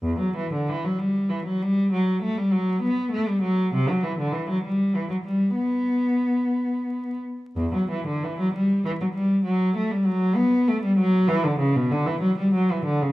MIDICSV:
0, 0, Header, 1, 2, 480
1, 0, Start_track
1, 0, Tempo, 626959
1, 29, Time_signature, 6, 3, 24, 8
1, 1467, Tempo, 608519
1, 4347, Tempo, 645856
1, 5307, Tempo, 678733
1, 6267, Tempo, 612870
1, 9147, Tempo, 642398
1, 10064, End_track
2, 0, Start_track
2, 0, Title_t, "Cello"
2, 0, Program_c, 0, 42
2, 18, Note_on_c, 0, 40, 67
2, 149, Note_off_c, 0, 40, 0
2, 151, Note_on_c, 0, 54, 54
2, 276, Note_off_c, 0, 54, 0
2, 279, Note_on_c, 0, 52, 58
2, 399, Note_off_c, 0, 52, 0
2, 408, Note_on_c, 0, 50, 51
2, 522, Note_off_c, 0, 50, 0
2, 523, Note_on_c, 0, 52, 60
2, 641, Note_off_c, 0, 52, 0
2, 644, Note_on_c, 0, 54, 54
2, 754, Note_on_c, 0, 55, 59
2, 761, Note_off_c, 0, 54, 0
2, 991, Note_on_c, 0, 52, 54
2, 994, Note_off_c, 0, 55, 0
2, 1112, Note_off_c, 0, 52, 0
2, 1116, Note_on_c, 0, 54, 59
2, 1231, Note_off_c, 0, 54, 0
2, 1242, Note_on_c, 0, 55, 69
2, 1472, Note_off_c, 0, 55, 0
2, 1475, Note_on_c, 0, 54, 67
2, 1706, Note_off_c, 0, 54, 0
2, 1709, Note_on_c, 0, 57, 72
2, 1825, Note_off_c, 0, 57, 0
2, 1826, Note_on_c, 0, 55, 64
2, 1943, Note_on_c, 0, 54, 67
2, 1945, Note_off_c, 0, 55, 0
2, 2180, Note_on_c, 0, 59, 70
2, 2182, Note_off_c, 0, 54, 0
2, 2414, Note_on_c, 0, 57, 77
2, 2417, Note_off_c, 0, 59, 0
2, 2536, Note_off_c, 0, 57, 0
2, 2539, Note_on_c, 0, 55, 69
2, 2655, Note_on_c, 0, 54, 73
2, 2661, Note_off_c, 0, 55, 0
2, 2892, Note_off_c, 0, 54, 0
2, 2905, Note_on_c, 0, 48, 84
2, 3019, Note_off_c, 0, 48, 0
2, 3032, Note_on_c, 0, 54, 71
2, 3138, Note_on_c, 0, 52, 64
2, 3144, Note_off_c, 0, 54, 0
2, 3256, Note_off_c, 0, 52, 0
2, 3265, Note_on_c, 0, 50, 57
2, 3369, Note_on_c, 0, 52, 65
2, 3378, Note_off_c, 0, 50, 0
2, 3492, Note_off_c, 0, 52, 0
2, 3504, Note_on_c, 0, 54, 62
2, 3614, Note_on_c, 0, 55, 58
2, 3617, Note_off_c, 0, 54, 0
2, 3851, Note_off_c, 0, 55, 0
2, 3861, Note_on_c, 0, 52, 52
2, 3973, Note_on_c, 0, 54, 49
2, 3981, Note_off_c, 0, 52, 0
2, 4023, Note_off_c, 0, 54, 0
2, 4091, Note_on_c, 0, 55, 58
2, 4335, Note_on_c, 0, 59, 64
2, 4338, Note_off_c, 0, 55, 0
2, 5521, Note_off_c, 0, 59, 0
2, 5804, Note_on_c, 0, 40, 64
2, 5919, Note_off_c, 0, 40, 0
2, 5935, Note_on_c, 0, 54, 50
2, 6043, Note_off_c, 0, 54, 0
2, 6049, Note_on_c, 0, 52, 55
2, 6157, Note_off_c, 0, 52, 0
2, 6164, Note_on_c, 0, 50, 51
2, 6271, Note_off_c, 0, 50, 0
2, 6284, Note_on_c, 0, 52, 56
2, 6400, Note_off_c, 0, 52, 0
2, 6410, Note_on_c, 0, 54, 59
2, 6517, Note_on_c, 0, 55, 55
2, 6521, Note_off_c, 0, 54, 0
2, 6755, Note_off_c, 0, 55, 0
2, 6762, Note_on_c, 0, 52, 53
2, 6810, Note_off_c, 0, 52, 0
2, 6887, Note_on_c, 0, 54, 52
2, 6933, Note_off_c, 0, 54, 0
2, 6993, Note_on_c, 0, 55, 66
2, 7229, Note_off_c, 0, 55, 0
2, 7234, Note_on_c, 0, 54, 69
2, 7465, Note_off_c, 0, 54, 0
2, 7477, Note_on_c, 0, 57, 66
2, 7589, Note_off_c, 0, 57, 0
2, 7592, Note_on_c, 0, 55, 57
2, 7707, Note_on_c, 0, 54, 70
2, 7709, Note_off_c, 0, 55, 0
2, 7943, Note_on_c, 0, 59, 74
2, 7947, Note_off_c, 0, 54, 0
2, 8187, Note_off_c, 0, 59, 0
2, 8198, Note_on_c, 0, 57, 69
2, 8313, Note_on_c, 0, 55, 66
2, 8314, Note_off_c, 0, 57, 0
2, 8429, Note_off_c, 0, 55, 0
2, 8432, Note_on_c, 0, 54, 78
2, 8665, Note_off_c, 0, 54, 0
2, 8668, Note_on_c, 0, 52, 86
2, 8787, Note_off_c, 0, 52, 0
2, 8798, Note_on_c, 0, 50, 76
2, 8907, Note_on_c, 0, 49, 74
2, 8912, Note_off_c, 0, 50, 0
2, 9025, Note_off_c, 0, 49, 0
2, 9038, Note_on_c, 0, 47, 67
2, 9154, Note_off_c, 0, 47, 0
2, 9159, Note_on_c, 0, 50, 71
2, 9270, Note_off_c, 0, 50, 0
2, 9272, Note_on_c, 0, 52, 64
2, 9383, Note_on_c, 0, 54, 69
2, 9386, Note_off_c, 0, 52, 0
2, 9499, Note_off_c, 0, 54, 0
2, 9511, Note_on_c, 0, 55, 69
2, 9623, Note_off_c, 0, 55, 0
2, 9634, Note_on_c, 0, 54, 67
2, 9745, Note_off_c, 0, 54, 0
2, 9758, Note_on_c, 0, 52, 60
2, 9865, Note_on_c, 0, 50, 63
2, 9871, Note_off_c, 0, 52, 0
2, 9984, Note_off_c, 0, 50, 0
2, 9989, Note_on_c, 0, 49, 56
2, 10064, Note_off_c, 0, 49, 0
2, 10064, End_track
0, 0, End_of_file